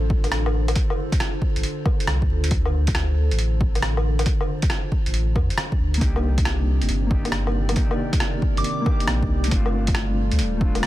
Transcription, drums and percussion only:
0.10 kick loud
0.24 closed hi-hat soft
0.24 low woodblock soft
0.32 cross-stick loud
0.32 closed hi-hat medium
0.46 low woodblock medium
0.68 closed hi-hat medium
0.68 low woodblock medium
0.76 kick loud
0.76 closed hi-hat medium
0.90 low woodblock medium
1.12 kick loud
1.12 closed hi-hat medium
1.20 cross-stick loud
1.20 closed hi-hat medium
1.42 kick medium
1.56 closed hi-hat soft
1.63 closed hi-hat medium
1.85 kick loud
1.85 low woodblock soft
2.00 closed hi-hat soft
2.07 cross-stick loud
2.07 closed hi-hat medium
2.22 kick medium
2.44 closed hi-hat medium
2.51 kick loud
2.51 closed hi-hat medium
2.65 low woodblock soft
2.87 kick loud
2.87 closed hi-hat medium
2.95 cross-stick loud
2.95 closed hi-hat medium
3.31 closed hi-hat soft
3.39 closed hi-hat medium
3.61 kick loud
3.75 closed hi-hat soft
3.75 low woodblock soft
3.82 cross-stick loud
3.82 closed hi-hat medium
3.97 low woodblock medium
4.19 closed hi-hat medium
4.19 low woodblock medium
4.26 kick loud
4.26 closed hi-hat medium
4.41 low woodblock soft
4.62 kick loud
4.62 closed hi-hat medium
4.70 cross-stick loud
4.70 closed hi-hat medium
4.92 kick medium
5.06 closed hi-hat soft
5.14 closed hi-hat medium
5.36 kick loud
5.36 low woodblock soft
5.50 closed hi-hat soft
5.58 cross-stick loud
5.58 closed hi-hat medium
5.72 kick medium
5.94 closed hi-hat medium
6.01 kick loud
6.01 closed hi-hat medium
6.16 low woodblock soft
6.38 kick loud
6.38 closed hi-hat medium
6.45 cross-stick loud
6.45 closed hi-hat medium
6.82 closed hi-hat soft
6.89 closed hi-hat soft
7.11 kick loud
7.25 closed hi-hat soft
7.25 low woodblock soft
7.32 cross-stick loud
7.32 closed hi-hat medium
7.47 low woodblock medium
7.69 closed hi-hat soft
7.69 low woodblock medium
7.76 kick loud
7.76 closed hi-hat soft
7.91 low woodblock medium
8.13 kick loud
8.13 closed hi-hat soft
8.20 cross-stick loud
8.20 closed hi-hat soft
8.42 kick medium
8.57 closed hi-hat soft
8.64 closed hi-hat medium
8.86 kick loud
8.86 low woodblock soft
9.00 closed hi-hat soft
9.07 cross-stick medium
9.07 closed hi-hat soft
9.23 kick medium
9.44 closed hi-hat medium
9.51 kick loud
9.51 closed hi-hat medium
9.66 low woodblock medium
9.87 kick medium
9.87 closed hi-hat medium
9.95 cross-stick loud
9.95 closed hi-hat medium
10.32 closed hi-hat soft
10.39 closed hi-hat medium
10.61 kick loud
10.75 closed hi-hat soft
10.75 low woodblock soft
10.83 cross-stick loud
10.83 closed hi-hat medium

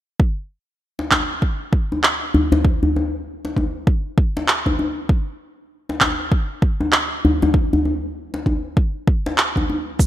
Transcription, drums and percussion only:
0.20 kick loud
0.99 djembe slap soft
1.11 kick medium
1.11 clap medium
1.11 djembe tone medium
1.42 kick medium
1.73 kick loud
1.92 djembe tone medium
2.04 clap medium
2.34 djembe bass medium
2.52 djembe slap medium
2.52 djembe bass medium
2.65 kick loud
2.83 djembe bass medium
2.96 djembe tone medium
3.45 djembe slap soft
3.57 kick medium
3.57 djembe tone medium
3.87 kick loud
4.18 kick loud
4.37 djembe slap medium
4.48 clap medium
4.66 kick medium
4.66 djembe tone medium
4.79 djembe tone medium
5.09 kick loud
5.89 djembe slap soft
6.01 kick medium
6.01 clap medium
6.01 djembe tone medium
6.32 kick loud
6.62 kick loud
6.80 djembe tone medium
6.92 clap medium
7.25 djembe bass medium
7.42 djembe slap medium
7.42 djembe bass medium
7.54 kick loud
7.73 djembe bass medium
7.85 djembe tone soft
8.34 djembe slap soft
8.46 kick medium
8.46 djembe tone medium
8.77 kick loud
9.07 kick loud
9.26 djembe slap medium
9.38 clap medium
9.56 kick medium
9.56 djembe tone medium
9.70 djembe tone soft
9.99 kick loud
9.99 cabasa soft

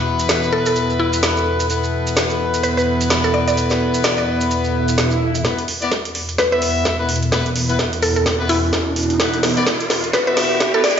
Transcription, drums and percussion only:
0.19 closed hi-hat medium
0.19 maracas medium
0.29 snare loud
0.29 closed hi-hat soft
0.29 maracas medium
0.43 maracas soft
0.66 closed hi-hat medium
0.66 maracas medium
0.76 closed hi-hat soft
0.76 maracas soft
0.90 maracas soft
1.13 closed hi-hat medium
1.13 maracas medium
1.23 snare loud
1.23 closed hi-hat soft
1.23 maracas soft
1.37 maracas soft
1.60 closed hi-hat medium
1.60 maracas medium
1.70 closed hi-hat soft
1.70 maracas medium
1.83 maracas soft
2.07 closed hi-hat medium
2.07 maracas medium
2.16 snare loud
2.16 closed hi-hat soft
2.16 maracas medium
2.30 maracas soft
2.54 closed hi-hat medium
2.54 maracas medium
2.63 closed hi-hat soft
2.63 maracas medium
2.78 maracas soft
3.01 closed hi-hat medium
3.01 maracas medium
3.10 snare loud
3.10 closed hi-hat medium
3.10 maracas soft
3.24 maracas soft
3.48 closed hi-hat medium
3.48 maracas medium
3.57 closed hi-hat medium
3.57 maracas medium
3.70 snare soft
3.70 maracas soft
3.94 closed hi-hat medium
3.94 maracas medium
4.04 snare loud
4.04 closed hi-hat medium
4.04 maracas medium
4.18 maracas soft
4.41 closed hi-hat medium
4.41 maracas medium
4.51 closed hi-hat soft
4.51 maracas medium
4.64 maracas soft
4.88 closed hi-hat medium
4.88 maracas medium
4.98 snare loud
4.98 closed hi-hat medium
4.98 maracas medium
5.11 maracas soft
5.35 closed hi-hat medium
5.35 maracas medium
5.45 kick loud
5.45 snare soft
5.45 closed hi-hat medium
5.58 closed hi-hat medium
5.68 open hi-hat loud
5.82 closed hi-hat soft
5.92 kick loud
5.92 snare soft
6.05 closed hi-hat medium
6.15 open hi-hat medium
6.29 closed hi-hat medium
6.38 kick loud
6.38 snare soft
6.38 closed hi-hat medium
6.62 open hi-hat loud
6.85 kick loud
6.85 snare medium
6.85 closed hi-hat medium
7.09 open hi-hat loud
7.16 closed hi-hat medium
7.23 closed hi-hat medium
7.32 kick loud
7.32 snare medium
7.32 closed hi-hat medium
7.46 closed hi-hat soft
7.56 open hi-hat loud
7.69 closed hi-hat medium
7.79 kick loud
7.79 snare medium
7.93 closed hi-hat medium
8.03 open hi-hat loud
8.16 closed hi-hat medium
8.26 kick loud
8.26 snare medium
8.26 closed hi-hat medium
8.49 open hi-hat loud
8.73 kick loud
8.73 snare medium
8.73 closed hi-hat medium
8.96 open hi-hat loud
9.03 closed hi-hat medium
9.10 closed hi-hat medium
9.20 kick loud
9.20 snare medium
9.20 closed hi-hat medium
9.34 closed hi-hat medium
9.43 snare medium
9.43 open hi-hat loud
9.57 closed hi-hat soft
9.67 kick loud
9.67 snare medium
9.80 closed hi-hat medium
9.90 snare medium
9.90 open hi-hat loud
10.04 closed hi-hat medium
10.13 kick loud
10.13 snare medium
10.13 closed hi-hat medium
10.37 snare medium
10.37 open hi-hat loud
10.60 kick loud
10.60 snare medium
10.60 closed hi-hat medium
10.84 snare medium
10.84 open hi-hat loud
10.91 closed hi-hat medium

